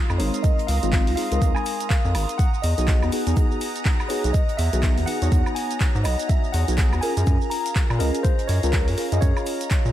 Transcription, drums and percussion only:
0.10 high woodblock, shaker
0.20 open hi-hat, shaker
0.34 closed hi-hat, shaker
0.44 kick, closed hi-hat, shaker
0.59 closed hi-hat, shaker
0.68 snare, open hi-hat, shaker
0.83 closed hi-hat, shaker
0.93 kick, snare, clap, closed hi-hat, shaker
1.07 open hi-hat, shaker
1.17 snare, open hi-hat, shaker
1.32 closed hi-hat, shaker
1.42 kick, closed hi-hat, shaker
1.56 high woodblock, shaker
1.66 open hi-hat, shaker
1.81 closed hi-hat, shaker
1.90 kick, snare, clap, closed hi-hat, shaker
2.05 shaker
2.15 open hi-hat, high woodblock, shaker
2.29 closed hi-hat, shaker
2.39 kick, closed hi-hat, shaker
2.54 shaker
2.64 open hi-hat, shaker
2.78 closed hi-hat, shaker
2.88 kick, snare, clap, closed hi-hat, shaker
3.02 high woodblock, shaker
3.12 open hi-hat, shaker
3.27 closed hi-hat, shaker
3.37 kick, closed hi-hat, shaker
3.51 shaker
3.61 open hi-hat, shaker
3.76 closed hi-hat, shaker
3.85 kick, snare, clap, closed hi-hat, shaker
4.00 high woodblock, shaker
4.10 open hi-hat, shaker
4.24 closed hi-hat, shaker
4.34 kick, closed hi-hat, shaker
4.49 closed hi-hat, shaker
4.59 snare, open hi-hat, shaker
4.73 closed hi-hat, shaker
4.83 kick, snare, clap, closed hi-hat, shaker
4.98 open hi-hat, shaker
5.07 snare, open hi-hat, shaker
5.22 closed hi-hat, shaker
5.32 kick, closed hi-hat, shaker
5.46 high woodblock, shaker
5.56 open hi-hat, shaker
5.71 closed hi-hat, shaker
5.80 kick, snare, clap, closed hi-hat, shaker
5.95 shaker
6.04 open hi-hat, high woodblock, shaker
6.20 closed hi-hat, shaker
6.29 kick, closed hi-hat, shaker
6.44 shaker
6.54 open hi-hat, shaker
6.68 closed hi-hat, shaker
6.78 kick, snare, clap, closed hi-hat, shaker
6.93 high woodblock, shaker
7.02 open hi-hat, shaker
7.17 closed hi-hat, shaker
7.27 kick, closed hi-hat, shaker
7.42 shaker
7.51 open hi-hat, shaker
7.66 closed hi-hat, shaker
7.75 kick, snare, clap, closed hi-hat, shaker
7.90 high woodblock, shaker
8.00 open hi-hat, shaker
8.15 closed hi-hat, shaker
8.25 kick, closed hi-hat, shaker
8.39 closed hi-hat, shaker
8.49 snare, open hi-hat, shaker
8.63 closed hi-hat, shaker
8.73 kick, snare, clap, closed hi-hat, shaker
8.88 open hi-hat, shaker
8.97 snare, open hi-hat, shaker
9.12 closed hi-hat, shaker
9.22 kick, closed hi-hat, shaker
9.37 high woodblock, shaker
9.46 open hi-hat, shaker
9.61 closed hi-hat, shaker
9.70 kick, snare, clap, closed hi-hat, shaker
9.85 shaker

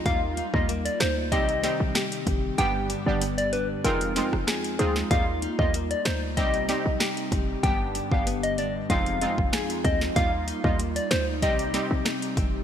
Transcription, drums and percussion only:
0.06 kick, closed hi-hat
0.37 closed hi-hat
0.54 kick
0.69 closed hi-hat
0.86 closed hi-hat
1.00 cross-stick, snare, closed hi-hat
1.32 kick, closed hi-hat
1.49 closed hi-hat
1.63 snare, closed hi-hat
1.95 cross-stick, snare, closed hi-hat
2.12 closed hi-hat
2.27 kick, closed hi-hat
2.58 closed hi-hat
2.90 closed hi-hat
3.22 closed hi-hat
3.38 closed hi-hat
3.53 closed hi-hat
3.85 closed hi-hat
4.01 closed hi-hat
4.16 snare, closed hi-hat
4.33 cross-stick
4.47 cross-stick, snare, closed hi-hat
4.64 closed hi-hat
4.79 closed hi-hat
4.96 snare
5.11 kick, closed hi-hat
5.42 closed hi-hat
5.59 kick
5.74 closed hi-hat
5.91 closed hi-hat
6.05 cross-stick, snare, closed hi-hat
6.37 kick, closed hi-hat
6.54 closed hi-hat
6.69 snare, closed hi-hat
7.00 cross-stick, snare, closed hi-hat
7.17 closed hi-hat
7.32 kick, closed hi-hat
7.63 kick, closed hi-hat
7.95 closed hi-hat
8.12 kick
8.27 closed hi-hat
8.43 closed hi-hat
8.58 closed hi-hat
8.90 kick, closed hi-hat
9.06 closed hi-hat
9.21 closed hi-hat
9.38 kick
9.53 cross-stick, snare, closed hi-hat
9.70 closed hi-hat
9.85 kick, closed hi-hat
10.01 snare
10.16 kick, closed hi-hat
10.48 closed hi-hat
10.64 kick
10.80 closed hi-hat
10.96 closed hi-hat
11.11 cross-stick, snare, closed hi-hat
11.42 kick, closed hi-hat
11.59 closed hi-hat
11.74 snare, closed hi-hat
12.05 cross-stick, snare, closed hi-hat
12.22 closed hi-hat
12.37 kick, closed hi-hat

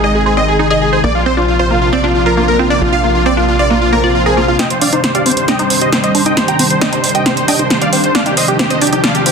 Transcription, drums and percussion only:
4.59 snare, closed hi-hat
4.70 closed hi-hat
4.81 open hi-hat
4.93 closed hi-hat
5.04 snare, closed hi-hat
5.15 closed hi-hat
5.26 open hi-hat
5.31 closed hi-hat
5.37 closed hi-hat
5.48 snare, closed hi-hat
5.59 closed hi-hat
5.70 open hi-hat
5.81 closed hi-hat
5.93 snare, closed hi-hat
6.04 closed hi-hat
6.15 open hi-hat
6.26 closed hi-hat
6.37 snare, closed hi-hat
6.48 closed hi-hat
6.59 open hi-hat
6.70 closed hi-hat
6.82 snare, closed hi-hat
6.93 closed hi-hat
7.04 open hi-hat
7.09 closed hi-hat
7.15 closed hi-hat
7.26 snare, closed hi-hat
7.37 closed hi-hat
7.48 open hi-hat
7.59 closed hi-hat
7.70 snare, closed hi-hat
7.82 closed hi-hat
7.93 open hi-hat
8.04 closed hi-hat
8.15 snare, closed hi-hat
8.26 closed hi-hat
8.37 open hi-hat
8.48 closed hi-hat
8.59 snare, closed hi-hat
8.70 closed hi-hat
8.81 open hi-hat
8.87 closed hi-hat
8.93 closed hi-hat
9.04 snare, closed hi-hat
9.15 closed hi-hat
9.26 open hi-hat

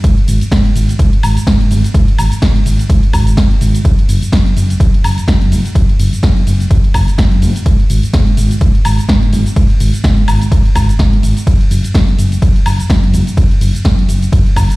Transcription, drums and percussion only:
0.04 kick, closed hi-hat, ride, cabasa
0.17 closed hi-hat
0.28 open hi-hat, cabasa
0.41 closed hi-hat, cabasa
0.52 kick, snare, closed hi-hat, ride, cabasa
0.65 closed hi-hat
0.76 open hi-hat, cabasa
0.89 closed hi-hat, cabasa
0.99 kick, closed hi-hat, ride, cabasa
1.13 closed hi-hat
1.23 open hi-hat, cabasa, high woodblock
1.37 closed hi-hat, cabasa
1.47 kick, snare, closed hi-hat, ride
1.61 closed hi-hat
1.71 open hi-hat, cabasa
1.84 closed hi-hat, cabasa
1.94 kick, closed hi-hat, ride, cabasa
2.08 closed hi-hat
2.19 open hi-hat, cabasa, high woodblock
2.32 closed hi-hat, cabasa
2.42 kick, snare, closed hi-hat, ride, cabasa
2.56 closed hi-hat
2.66 open hi-hat, cabasa
2.79 closed hi-hat, cabasa
2.90 kick, closed hi-hat, ride, cabasa
3.03 closed hi-hat
3.13 kick, open hi-hat, cabasa, high woodblock
3.27 closed hi-hat, cabasa
3.37 kick, snare, closed hi-hat, ride
3.51 closed hi-hat
3.61 open hi-hat, cabasa
3.75 closed hi-hat, cabasa
3.85 kick, closed hi-hat, ride, cabasa
3.99 closed hi-hat
4.09 open hi-hat, cabasa
4.22 closed hi-hat, cabasa
4.32 kick, snare, closed hi-hat, ride
4.46 closed hi-hat
4.57 open hi-hat, cabasa
4.70 closed hi-hat, cabasa
4.80 kick, closed hi-hat, ride, cabasa
4.94 closed hi-hat
5.04 open hi-hat, cabasa, high woodblock
5.18 closed hi-hat, cabasa
5.28 kick, snare, closed hi-hat, ride, cabasa
5.42 closed hi-hat
5.52 open hi-hat, cabasa
5.66 closed hi-hat, cabasa
5.75 kick, closed hi-hat, ride, cabasa
5.89 closed hi-hat
5.99 open hi-hat, cabasa
6.13 closed hi-hat, cabasa
6.23 kick, snare, closed hi-hat, ride
6.37 closed hi-hat
6.47 open hi-hat, cabasa
6.60 closed hi-hat, cabasa
6.71 kick, closed hi-hat, ride, cabasa
6.84 closed hi-hat
6.94 kick, open hi-hat, cabasa, high woodblock
7.08 closed hi-hat, cabasa
7.18 kick, snare, closed hi-hat, ride, cabasa
7.32 closed hi-hat
7.42 open hi-hat, cabasa
7.56 closed hi-hat, cabasa
7.66 kick, closed hi-hat, ride, cabasa
7.79 closed hi-hat
7.90 open hi-hat, cabasa
8.03 closed hi-hat, cabasa
8.13 kick, snare, closed hi-hat, ride, cabasa
8.27 closed hi-hat
8.37 open hi-hat, cabasa
8.51 closed hi-hat, cabasa
8.61 kick, closed hi-hat, ride, cabasa
8.75 closed hi-hat
8.85 open hi-hat, cabasa, high woodblock
8.99 closed hi-hat, cabasa
9.09 kick, snare, closed hi-hat, ride
9.22 closed hi-hat
9.33 open hi-hat, cabasa
9.46 closed hi-hat, cabasa
9.56 kick, closed hi-hat, ride, cabasa
9.70 closed hi-hat
9.80 open hi-hat, cabasa
9.94 closed hi-hat, cabasa
10.04 kick, snare, closed hi-hat, ride, cabasa
10.18 closed hi-hat
10.28 open hi-hat, cabasa, high woodblock
10.42 closed hi-hat, cabasa
10.52 kick, closed hi-hat, ride, cabasa
10.65 closed hi-hat
10.75 kick, open hi-hat, cabasa, high woodblock
10.89 closed hi-hat, cabasa
10.99 kick, snare, closed hi-hat, ride, cabasa
11.13 closed hi-hat
11.23 open hi-hat, cabasa
11.37 closed hi-hat, cabasa
11.47 kick, closed hi-hat, ride, cabasa
11.61 closed hi-hat
11.71 open hi-hat, cabasa
11.84 closed hi-hat, cabasa
11.95 kick, snare, closed hi-hat, ride, cabasa
12.08 closed hi-hat
12.19 open hi-hat, cabasa
12.32 closed hi-hat, cabasa
12.42 kick, closed hi-hat, ride, cabasa
12.56 closed hi-hat
12.66 open hi-hat, cabasa, high woodblock
12.80 closed hi-hat, cabasa
12.90 kick, snare, closed hi-hat, ride, cabasa
13.03 closed hi-hat
13.14 open hi-hat, cabasa
13.27 closed hi-hat, cabasa
13.37 kick, closed hi-hat, ride, cabasa
13.51 closed hi-hat
13.61 open hi-hat, cabasa
13.75 closed hi-hat, cabasa
13.85 kick, snare, closed hi-hat, ride, cabasa
13.99 closed hi-hat
14.09 open hi-hat, cabasa
14.22 closed hi-hat, cabasa
14.32 kick, closed hi-hat, ride, cabasa
14.46 closed hi-hat
14.56 kick, open hi-hat, cabasa, high woodblock
14.70 closed hi-hat, cabasa

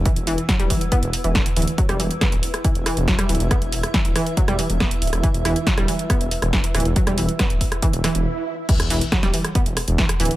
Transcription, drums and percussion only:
0.06 kick, closed hi-hat
0.16 closed hi-hat
0.27 open hi-hat
0.38 closed hi-hat
0.49 kick, snare, closed hi-hat
0.60 closed hi-hat
0.70 kick, open hi-hat
0.81 closed hi-hat
0.92 kick, closed hi-hat
1.03 closed hi-hat
1.13 open hi-hat
1.24 closed hi-hat
1.35 kick, snare, closed hi-hat
1.46 closed hi-hat
1.57 open hi-hat
1.62 closed hi-hat
1.67 closed hi-hat
1.78 kick, closed hi-hat
1.89 cross-stick, closed hi-hat
2.00 open hi-hat
2.11 closed hi-hat
2.21 kick, cross-stick, snare, closed hi-hat
2.32 closed hi-hat
2.43 open hi-hat
2.54 cross-stick, closed hi-hat
2.64 kick, closed hi-hat
2.75 closed hi-hat
2.86 cross-stick, open hi-hat
2.97 closed hi-hat
3.08 kick, snare, closed hi-hat
3.19 cross-stick, closed hi-hat
3.29 open hi-hat
3.35 closed hi-hat
3.40 closed hi-hat
3.51 kick, cross-stick, closed hi-hat
3.62 closed hi-hat
3.72 open hi-hat
3.83 cross-stick, closed hi-hat
3.94 kick, snare, closed hi-hat
4.05 closed hi-hat
4.16 cross-stick, open hi-hat
4.26 closed hi-hat
4.37 kick, closed hi-hat
4.48 cross-stick, closed hi-hat
4.59 open hi-hat
4.70 closed hi-hat
4.80 kick, cross-stick, snare, closed hi-hat
4.91 closed hi-hat
5.02 open hi-hat
5.07 closed hi-hat
5.13 cross-stick, closed hi-hat
5.23 kick, closed hi-hat
5.34 closed hi-hat
5.45 cross-stick, open hi-hat
5.56 closed hi-hat
5.67 kick, snare, closed hi-hat
5.78 cross-stick, closed hi-hat
5.88 open hi-hat
5.99 closed hi-hat
6.10 kick, cross-stick, closed hi-hat
6.21 closed hi-hat
6.31 open hi-hat
6.42 cross-stick, closed hi-hat
6.53 kick, snare, closed hi-hat
6.64 closed hi-hat
6.75 cross-stick, open hi-hat
6.80 closed hi-hat
6.85 closed hi-hat
6.96 kick, closed hi-hat
7.07 cross-stick, closed hi-hat
7.18 open hi-hat
7.29 closed hi-hat
7.39 kick, cross-stick, snare, closed hi-hat
7.50 closed hi-hat
7.61 kick, open hi-hat
7.72 cross-stick, closed hi-hat
7.82 kick, closed hi-hat
7.93 closed hi-hat
8.04 cross-stick, snare, open hi-hat
8.15 closed hi-hat
8.69 kick, closed hi-hat, crash
8.80 cross-stick, closed hi-hat
8.90 open hi-hat
9.01 closed hi-hat
9.12 kick, cross-stick, snare, closed hi-hat
9.23 snare, closed hi-hat
9.34 open hi-hat
9.44 cross-stick, closed hi-hat
9.55 kick, closed hi-hat
9.66 closed hi-hat
9.77 cross-stick, open hi-hat
9.88 closed hi-hat
9.98 kick, snare, closed hi-hat
10.09 cross-stick, closed hi-hat
10.20 open hi-hat
10.25 closed hi-hat
10.31 closed hi-hat

